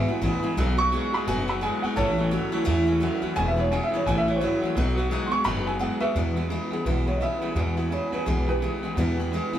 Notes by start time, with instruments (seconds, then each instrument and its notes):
0.08 clean electric guitar E2 B2, steel-string acoustic guitar E3 G#3 B3 E4, muted upright bass stroke
0.21 upright bass A1, clean electric guitar E2 C#3, steel-string acoustic guitar E3 G#3 B3 E4
0.42 clean electric guitar E2 C#3, steel-string acoustic guitar E3 G#3 B3 E4, muted upright bass stroke
0.57 upright bass B1, steel-string acoustic guitar B2 F#3 B3 D#4 F#4, clean electric guitar B2 F#3
0.77 clean electric guitar B2 F#3, steel-string acoustic guitar B3 D#4 F#4, upright piano C#6
0.92 clean electric guitar B2 G#3, steel-string acoustic guitar F#3 B3 D#4 F#4
1.13 clean electric guitar B2 G#3, steel-string acoustic guitar B3 D#4 F#4, upright piano B5, muted upright bass stroke
1.27 upright bass F#1, clean electric guitar B2 F#3, steel-string acoustic guitar B2 F#3 B3 D#4 F#4, upright piano G#5
1.48 clean electric guitar B2 F#3, steel-string acoustic guitar B3 D#4 F#4, upright piano B5
1.61 clean electric guitar B2 G#3, steel-string acoustic guitar F#3 B3 D#4 F#4, upright piano G#5
1.82 clean electric guitar B2 G#3, steel-string acoustic guitar B3 D#4 F#4, upright piano F#5, muted upright bass stroke
1.96 upright bass A1, steel-string acoustic guitar A2 E3 A3 C#4 E4, clean electric guitar A2 E3, upright piano A4 C#5
2.18 clean electric guitar A2 E3, steel-string acoustic guitar A3 C#4 E4
2.31 clean electric guitar A2 F#3, steel-string acoustic guitar E3 A3 C#4 E4
2.52 clean electric guitar A2 F#3, steel-string acoustic guitar A3 C#4 E4, muted upright bass stroke
2.65 upright bass E2, steel-string acoustic guitar A2 E3 A3 C#4 E4, clean electric guitar A2 E3
2.87 clean electric guitar A2 E3, steel-string acoustic guitar A3 C#4 E4
3.00 clean electric guitar A2 F#3, steel-string acoustic guitar E3 A3 C#4 E4
3.22 clean electric guitar A2 F#3, steel-string acoustic guitar A3 C#4 E4, muted upright bass stroke
3.36 upright bass E1, clean electric guitar E2 B2, steel-string acoustic guitar E2 B2 E3 G#3 B3 E4, upright piano G#5
3.48 upright piano E5
3.56 clean electric guitar E2 B2, steel-string acoustic guitar E3 G#3 B3 E4, upright piano C#5
3.71 clean electric guitar E2 C#3, steel-string acoustic guitar E3 G#3 B3 E4, upright piano G#5
3.84 upright piano E5
3.91 clean electric guitar E2 C#3, steel-string acoustic guitar G#3 B3 E4, muted upright bass stroke
3.96 steel-string acoustic guitar E3, upright piano C#5
4.06 upright bass A1, clean electric guitar A2 E3, steel-string acoustic guitar A2 E3 A3 C#4 E4, upright piano G#5
4.18 upright piano E5
4.27 clean electric guitar A2 E3, steel-string acoustic guitar A3 C#4 E4, upright piano C#5
4.36 upright piano C5
4.41 clean electric guitar A2 F#3, steel-string acoustic guitar E3 A3 C#4 E4, upright piano C#5
4.61 clean electric guitar A2 F#3, steel-string acoustic guitar E4, muted upright bass stroke
4.65 steel-string acoustic guitar A3 C#4
4.75 upright bass B1, clean electric guitar B2 F#3, steel-string acoustic guitar B2 F#3 B3 D#4 F#4
4.96 clean electric guitar B2 F#3, steel-string acoustic guitar B3 D#4 F#4
5.09 clean electric guitar B2 G#3, steel-string acoustic guitar F#3 B3 F#4
5.13 steel-string acoustic guitar D#4
5.27 clean electric guitar B2 G#3, upright piano C6
5.31 steel-string acoustic guitar B3 D#4 F#4, upright piano C#6
5.44 upright bass F#1, steel-string acoustic guitar B2 F#3 B3 D#4 F#4, clean electric guitar B2 F#3, upright piano B5
5.66 clean electric guitar B2 F#3, steel-string acoustic guitar B3 D#4 F#4, upright piano G#5
5.79 clean electric guitar B2 G#3, steel-string acoustic guitar F#3 B3 D#4 F#4, upright piano F#5
6.00 clean electric guitar B2 G#3, steel-string acoustic guitar B3 D#4 F#4, upright piano B4 E5, muted upright bass stroke
6.14 clean electric guitar E2 B2, upright bass E2, steel-string acoustic guitar E2 B2 E3 G#3 B3 E4
6.35 clean electric guitar E2 B2, steel-string acoustic guitar E3 G#3 B3 E4
6.49 clean electric guitar E2 C#3, steel-string acoustic guitar E3 G#3 B3 E4
6.71 clean electric guitar E2 C#3, steel-string acoustic guitar E3 G#3 B3 E4, upright piano G#4, muted upright bass stroke
6.85 upright bass B1, clean electric guitar E2 B2, steel-string acoustic guitar E2 B2 E3 G#3 B3 E4, upright piano B4
7.06 clean electric guitar E2 B2, steel-string acoustic guitar E3 G#3 B3 E4, upright piano C#5
7.17 clean electric guitar E2 C#3, steel-string acoustic guitar E3, upright piano D#5
7.22 steel-string acoustic guitar G#3 B3 E4, upright piano E5
7.41 clean electric guitar E2 C#3, steel-string acoustic guitar E3 G#3 B3 E4, muted upright bass stroke
7.55 upright bass E2, clean electric guitar E2 B2, steel-string acoustic guitar E2 B2 E3 G#3 B3 E4
7.77 clean electric guitar E2 B2, steel-string acoustic guitar E3 G#3 B3 E4
7.90 clean electric guitar E2 C#3, steel-string acoustic guitar E3 G#3 B3 E4, upright piano C#5
8.11 clean electric guitar E2 C#3, steel-string acoustic guitar E3 G#3 B3 E4, upright piano B4, muted upright bass stroke
8.26 upright bass B1, clean electric guitar E2 B2, steel-string acoustic guitar E2 B2 E3 G#3 B3 E4, upright piano G#4
8.47 clean electric guitar E2 B2, steel-string acoustic guitar G#3 B3 E4, upright piano G4 B4
8.51 steel-string acoustic guitar E3
8.60 clean electric guitar E2 C#3, steel-string acoustic guitar E3 G#3 B3 E4
8.82 clean electric guitar E2 C#3, steel-string acoustic guitar E3 G#3 B3 E4, muted upright bass stroke
8.95 clean electric guitar E2 B2, upright bass E2, steel-string acoustic guitar E2 B2 E3 G#3 B3 E4
9.17 clean electric guitar E2 B2, steel-string acoustic guitar E3 B3 E4
9.21 steel-string acoustic guitar G#3
9.31 clean electric guitar E2 C#3, steel-string acoustic guitar E3 G#3 B3 E4
9.52 clean electric guitar E2 C#3, steel-string acoustic guitar E3 G#3 B3 E4, muted upright bass stroke